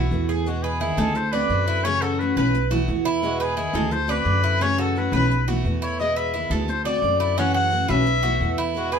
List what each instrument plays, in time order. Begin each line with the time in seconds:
Already playing: steel-string acoustic guitar E3 A3 B3 E4, trumpet E4, cuban tres F#4
0.11 upright bass E2, steel-string acoustic guitar E3 A3 B3 E4
0.29 cuban tres G#4
0.46 steel-string acoustic guitar B2 G#3 B3 E4, trumpet F#4
0.63 trumpet G#4, cuban tres B4
0.80 steel-string acoustic guitar D#3 G#3 B3 E4, cuban tres E4
0.97 upright bass D2, steel-string acoustic guitar D#3 G#3 B3 E4, cuban tres A4
1.15 trumpet C5, muted steel-string acoustic guitar stroke
1.32 steel-string acoustic guitar A3 C4 F#4, trumpet B4, cuban tres D5
1.50 upright bass F#2, steel-string acoustic guitar D3 A3 C4 F#4
1.68 cuban tres E4
1.84 steel-string acoustic guitar C#3 E3 A3 C#4 F#4, cuban tres C#4, trumpet C#5
2.02 cuban tres F#4, trumpet A4
2.19 steel-string acoustic guitar E3 A3 C#4 F#4, trumpet B4
2.37 upright bass B1, steel-string acoustic guitar E3 A3 C#4 F#4, cuban tres B4, trumpet B4
2.54 muted steel-string acoustic guitar stroke
2.71 steel-string acoustic guitar E3 A3 B3 E4, cuban tres F#4
2.88 upright bass E2, steel-string acoustic guitar E3 A3 B3 E4
3.05 cuban tres E4
3.22 steel-string acoustic guitar B2 G#3 B3 E4, trumpet F#4
3.40 trumpet G#4, cuban tres B4
3.56 steel-string acoustic guitar D#3 G#3 B3 E4, cuban tres E4
3.73 upright bass D2, steel-string acoustic guitar D#3 G#3 B3 E4, cuban tres A4
3.91 trumpet C5, muted steel-string acoustic guitar stroke
4.08 steel-string acoustic guitar A3 C4 F#4, trumpet B4, cuban tres D5
4.25 upright bass F#2, steel-string acoustic guitar D3 A3 C4 F#4
4.44 cuban tres E4
4.61 steel-string acoustic guitar C#3 E3 A3 C#4 F#4, cuban tres C#4, trumpet C#5
4.78 cuban tres F#4, trumpet A4
4.95 steel-string acoustic guitar E3 A3 C#4 F#4, trumpet B4
5.12 upright bass B1, steel-string acoustic guitar E3 A3 C#4 F#4, cuban tres B4, trumpet B4
5.31 muted steel-string acoustic guitar stroke
5.48 steel-string acoustic guitar E3 A3 B3 E4, cuban tres F#4
5.64 upright bass E2, steel-string acoustic guitar E3 A3 B3 E4
5.82 cuban tres E4, trumpet C#5
6.00 steel-string acoustic guitar B2 G#3 B3 E4, trumpet D#5
6.16 cuban tres B4, trumpet E5
6.34 steel-string acoustic guitar D#3 G#3 B3 E4, cuban tres E4
6.50 upright bass D2, steel-string acoustic guitar D#3 G#3 B3 E4, cuban tres A4
6.68 trumpet C5, muted steel-string acoustic guitar stroke
6.85 steel-string acoustic guitar A3 C4 F#4, trumpet D5, cuban tres D5
7.02 upright bass F#2, steel-string acoustic guitar D3 A3 C4 F#4
7.20 cuban tres E4
7.37 steel-string acoustic guitar C#3 E3 A3 C#4 F#4, cuban tres C#4, trumpet F#5
7.54 cuban tres F#4, trumpet F#5
7.71 steel-string acoustic guitar E3 A3 C#4 F#4
7.88 upright bass B1, steel-string acoustic guitar E3 A3 C#4 F#4, cuban tres B4, trumpet E5
8.06 muted steel-string acoustic guitar stroke
8.23 steel-string acoustic guitar E3 A3 B3 E4, cuban tres F#4
8.40 upright bass E2, steel-string acoustic guitar E3 A3 B3 E4
8.58 cuban tres E4
8.75 steel-string acoustic guitar B2 G#3 B3 E4, trumpet F#4
8.92 trumpet G#4, cuban tres B4